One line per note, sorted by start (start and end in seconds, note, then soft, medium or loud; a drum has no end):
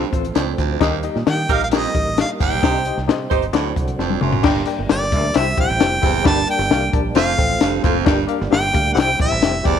0.00 0.79 F3 medium
0.00 0.79 A3 medium
0.00 0.79 C4 medium
0.12 0.31 A1 medium
0.12 0.25 C4 medium
0.12 0.26 F4 medium
0.12 0.26 A4 medium
0.12 0.26 C5 loud
0.12 kick medium
0.12 closed hi-hat medium
0.24 closed hi-hat soft
0.35 0.54 C#2 medium
0.35 0.53 F2 medium
0.35 0.57 F4 medium
0.35 0.57 D5 medium
0.35 snare loud
0.35 closed hi-hat loud
0.58 0.76 D2 medium
0.58 0.79 D#4 medium
0.58 1.02 C5 medium
0.58 kick medium
0.58 closed hi-hat medium
0.80 1.08 D#2 loud
0.80 0.99 D#2 medium
0.80 1.45 D#3 medium
0.80 3.51 G3 medium
0.80 2.61 A#3 medium
0.80 0.94 D#4 loud
0.80 3.51 D#4 medium
0.80 0.94 G4 loud
0.80 0.94 A#4 loud
0.80 0.94 D#5 loud
0.80 kick loud
0.80 snare loud
0.80 closed hi-hat medium
1.03 1.17 D#4 medium
1.03 1.17 G4 medium
1.03 1.17 A#4 medium
1.03 1.17 D#5 medium
1.03 closed hi-hat medium
1.16 1.24 A#2 medium
1.16 snare soft
1.26 1.45 D#3 medium
1.26 1.39 D#4 medium
1.26 1.40 G4 medium
1.26 1.40 A#4 medium
1.26 1.40 F5 medium
1.26 1.54 G5 loud
1.26 snare loud
1.26 closed hi-hat medium
1.49 1.85 A#1 medium
1.49 1.63 D#4 medium
1.49 1.62 D#4 medium
1.49 1.63 G4 medium
1.49 1.62 G4 medium
1.49 1.64 A#4 loud
1.49 1.63 A#4 medium
1.49 1.63 D#5 medium
1.49 1.62 F5 medium
1.49 kick medium
1.49 closed hi-hat medium
1.60 1.68 F5 medium
1.60 closed hi-hat soft
1.71 1.90 F2 medium
1.71 1.85 D#4 medium
1.71 1.85 G4 medium
1.71 1.85 A#4 medium
1.71 1.86 D#5 medium
1.71 2.16 D#5 medium
1.71 snare loud
1.71 closed hi-hat loud
1.94 2.22 A1 medium
1.94 2.08 D#4 medium
1.94 2.08 G4 medium
1.94 2.08 A#4 medium
1.94 2.08 D#5 medium
1.94 kick medium
1.94 closed hi-hat medium
2.17 2.30 D#4 medium
2.17 2.31 G4 medium
2.17 2.31 A#4 medium
2.17 2.31 D#5 medium
2.17 2.30 F5 medium
2.17 snare loud
2.17 closed hi-hat medium
2.40 2.49 G1 medium
2.40 2.58 D#2 medium
2.40 2.53 D#4 medium
2.40 2.53 G4 medium
2.40 2.53 A#4 medium
2.40 2.54 F5 medium
2.40 3.05 G5 medium
2.40 kick medium
2.40 closed hi-hat medium
2.53 2.62 B1 medium
2.62 2.90 C2 loud
2.62 2.81 C3 medium
2.62 3.27 C3 medium
2.62 4.43 C4 medium
2.62 2.76 D#4 medium
2.62 2.76 G4 medium
2.62 2.76 C5 medium
2.62 2.76 D#5 loud
2.62 kick loud
2.62 snare loud
2.62 closed hi-hat medium
2.85 2.99 D#4 medium
2.85 2.99 G4 medium
2.85 3.00 C5 medium
2.85 3.00 D#5 medium
2.85 closed hi-hat medium
2.97 3.10 C2 medium
2.97 snare soft
3.08 3.26 C3 medium
3.08 3.21 D#4 medium
3.08 3.21 G4 medium
3.08 3.21 C5 medium
3.08 3.22 D#5 medium
3.08 snare loud
3.08 closed hi-hat medium
3.30 3.49 G1 medium
3.30 3.45 D#4 medium
3.30 3.44 D#4 medium
3.30 3.45 G4 medium
3.30 3.44 G4 medium
3.30 3.45 C5 medium
3.30 3.44 C5 medium
3.30 3.45 D#5 loud
3.30 kick medium
3.30 closed hi-hat medium
3.42 closed hi-hat soft
3.53 3.71 D2 loud
3.53 3.72 A2 medium
3.53 4.18 D3 medium
3.53 4.44 F#3 medium
3.53 4.44 D4 medium
3.53 3.66 F#4 loud
3.53 3.66 A4 medium
3.53 3.67 C5 loud
3.53 3.67 D5 loud
3.53 snare loud
3.53 closed hi-hat loud
3.76 3.95 C2 medium
3.76 3.98 A4 medium
3.76 3.98 F#5 medium
3.76 kick medium
3.76 closed hi-hat medium
3.88 closed hi-hat medium
3.99 4.17 F1 medium
3.99 4.17 F2 medium
3.99 4.21 C5 medium
3.99 4.21 A5 medium
3.99 snare medium
4.10 high tom medium
4.21 4.39 F#1 medium
4.21 4.40 F#2 medium
4.21 4.65 E5 soft
4.21 4.65 C6 medium
4.21 mid tom medium
4.33 floor tom medium
4.43 4.62 G1 loud
4.43 5.08 G2 medium
4.43 4.63 G2 medium
4.43 7.14 G3 medium
4.43 5.35 A#3 medium
4.43 4.57 D4 loud
4.43 5.35 D4 medium
4.43 4.57 G4 loud
4.43 4.57 A#4 loud
4.43 4.57 D5 loud
4.43 4.57 G5 loud
4.43 kick loud
4.43 snare loud
4.43 crash loud
4.66 4.80 D4 medium
4.66 4.80 G4 medium
4.66 4.80 A#4 medium
4.66 4.80 D5 medium
4.66 4.80 G5 medium
4.66 closed hi-hat medium
4.78 4.87 G1 medium
4.89 5.14 G1 loud
4.89 5.03 D4 medium
4.89 5.03 G4 medium
4.89 5.03 A#4 medium
4.89 5.03 D5 medium
4.89 5.38 D5 medium
4.89 5.03 G5 medium
4.89 snare loud
4.89 closed hi-hat medium
5.12 5.30 D2 medium
5.12 5.25 D4 medium
5.12 5.25 G4 medium
5.12 5.25 A#4 medium
5.12 5.26 D5 medium
5.12 5.26 E5 medium
5.12 kick medium
5.12 closed hi-hat medium
5.34 5.53 C2 loud
5.34 5.99 C3 medium
5.34 6.24 C4 medium
5.34 5.48 E4 medium
5.34 6.25 E4 medium
5.34 5.48 G4 medium
5.34 5.48 C5 medium
5.34 5.48 E5 medium
5.34 5.58 E5 medium
5.34 5.48 G5 loud
5.34 snare loud
5.34 closed hi-hat loud
5.57 5.67 A#1 medium
5.57 5.70 E4 medium
5.57 5.70 G4 medium
5.57 5.71 C5 medium
5.57 5.71 E5 medium
5.57 5.71 G5 medium
5.57 6.23 G5 loud
5.57 kick medium
5.57 closed hi-hat medium
5.70 5.78 A1 loud
5.79 5.98 F1 medium
5.79 5.93 E4 medium
5.79 5.93 G4 medium
5.79 5.93 C5 medium
5.79 5.94 E5 medium
5.79 5.94 G5 medium
5.79 snare loud
5.79 closed hi-hat medium
6.02 6.21 F#1 medium
6.02 6.21 E2 medium
6.02 6.16 E4 medium
6.02 6.16 G4 medium
6.02 6.16 C5 medium
6.02 6.16 E5 medium
6.02 6.16 G5 medium
6.02 kick medium
6.02 closed hi-hat medium
6.24 6.44 G1 loud
6.24 6.89 G2 medium
6.24 6.43 G2 medium
6.24 7.15 A#3 medium
6.24 6.38 D4 medium
6.24 7.15 D4 medium
6.24 6.38 G4 medium
6.24 6.38 A#4 medium
6.24 6.38 D5 medium
6.24 6.39 G5 loud
6.24 6.48 A5 loud
6.24 kick loud
6.24 snare loud
6.24 closed hi-hat medium
6.47 6.61 D4 medium
6.47 6.61 G4 medium
6.47 6.61 A#4 medium
6.47 6.61 D5 medium
6.47 6.62 G5 medium
6.47 6.91 G5 loud
6.47 closed hi-hat medium
6.59 6.68 G1 loud
6.59 snare soft
6.70 6.88 C2 medium
6.70 6.84 D4 medium
6.70 6.84 G4 medium
6.70 6.84 A#4 medium
6.70 6.84 D5 medium
6.70 6.84 F5 medium
6.70 snare loud
6.70 closed hi-hat medium
6.92 7.11 A#1 medium
6.92 7.06 D4 medium
6.92 7.06 G4 medium
6.92 7.06 A#4 medium
6.92 7.07 D5 medium
6.92 7.07 A5 medium
6.92 kick medium
6.92 closed hi-hat medium
7.15 7.34 F1 medium
7.15 7.34 F2 medium
7.15 8.05 F3 medium
7.15 8.05 A3 medium
7.15 8.05 C4 medium
7.15 7.29 C4 medium
7.15 7.29 F4 medium
7.15 7.29 A4 medium
7.15 7.29 C5 medium
7.15 7.29 F5 loud
7.15 7.81 F5 loud
7.15 snare loud
7.15 closed hi-hat loud
7.38 7.57 A1 medium
7.38 7.51 C4 medium
7.38 7.51 F4 medium
7.38 7.52 A4 medium
7.38 7.52 C5 medium
7.38 7.52 G5 medium
7.38 kick medium
7.38 closed hi-hat medium
7.61 7.79 F1 medium
7.61 7.80 G2 medium
7.61 7.74 C4 medium
7.61 7.74 F4 medium
7.61 7.74 A4 medium
7.61 7.75 C5 medium
7.61 7.75 F5 medium
7.61 snare loud
7.61 closed hi-hat loud
7.83 8.02 F#1 loud
7.83 8.02 F2 medium
7.83 7.97 C4 medium
7.83 7.97 F4 medium
7.83 7.97 A4 medium
7.83 7.97 C5 medium
7.83 7.97 F5 loud
7.83 kick medium
7.83 closed hi-hat medium
8.05 8.25 G1 loud
8.05 8.70 G2 medium
8.05 8.25 G2 medium
8.05 9.79 G3 medium
8.05 8.96 A#3 medium
8.05 8.19 D4 loud
8.05 8.96 D4 medium
8.05 8.19 G4 loud
8.05 8.19 A#4 loud
8.05 8.19 D5 loud
8.05 8.19 G5 loud
8.05 kick loud
8.05 snare loud
8.05 closed hi-hat medium
8.27 8.41 D4 medium
8.27 8.42 G4 medium
8.27 8.42 A#4 medium
8.27 8.42 D5 medium
8.27 8.42 F5 loud
8.27 closed hi-hat medium
8.41 8.50 G1 loud
8.41 snare soft
8.51 8.70 G1 loud
8.51 8.64 D4 medium
8.51 8.64 G4 medium
8.51 8.65 A#4 medium
8.51 8.65 D5 medium
8.51 8.65 E5 medium
8.51 8.89 G5 loud
8.51 snare loud
8.51 closed hi-hat medium
8.73 8.93 D2 medium
8.73 8.87 D4 medium
8.73 8.87 G4 medium
8.73 8.87 A#4 medium
8.73 8.87 D5 medium
8.73 8.88 F5 medium
8.73 kick loud
8.73 closed hi-hat medium
8.93 9.15 C2 loud
8.93 9.60 C3 medium
8.93 9.79 C4 medium
8.93 9.09 E4 medium
8.93 9.79 E4 medium
8.93 9.09 G4 medium
8.93 9.09 C5 medium
8.93 9.10 E5 medium
8.93 9.01 F#5 medium
8.93 9.10 G5 loud
8.93 closed hi-hat loud
8.98 9.21 G5 loud
8.98 snare loud
9.18 9.29 A#1 medium
9.18 9.32 E4 medium
9.18 9.33 G4 medium
9.18 9.33 C5 medium
9.18 9.33 E5 medium
9.18 9.68 E5 loud
9.18 9.33 G5 medium
9.18 kick medium
9.18 closed hi-hat medium
9.31 9.40 A1 medium
9.41 9.61 F1 medium
9.41 9.55 E4 medium
9.41 9.55 G4 medium
9.41 9.55 C5 medium
9.41 9.55 E5 medium
9.41 9.56 G5 medium
9.41 snare loud
9.41 closed hi-hat loud
9.63 9.79 F#1 medium
9.63 9.79 E2 medium
9.63 9.77 E4 medium
9.63 9.78 G4 medium
9.63 9.78 C5 medium
9.63 9.79 D5 medium
9.63 9.78 E5 medium
9.63 9.78 G5 medium
9.63 kick medium
9.63 closed hi-hat medium